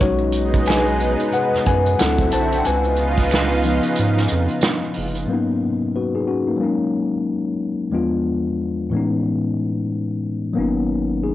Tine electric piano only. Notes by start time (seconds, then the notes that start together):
0.01 G#3 C#4 D#4 F#4 C#5
0.68 B4 G#5
1.34 B4 F#5
1.67 B4 G#5
1.99 F#3 C4 E4 A4 F#5
2.33 C5 A5
2.58 G5
2.66 B4 G#5
3.64 F3 B3 D#4
5.26 G#2 F#3 A#3
5.30 B3 C#4 D#4
5.96 F#4 B4
6.15 D#4 G#4
6.28 C#4 F#4
6.48 A#3 D#4
6.57 F#3 G#3 A#3
6.62 C#4 D#4
7.91 E2 F3 G#3 B3 D4 F4
8.90 A2 E3 G#3 B3
8.95 C#4 D#4
10.53 F#3 A#3 B3
10.59 C#4 D#4
11.24 D#4 G#4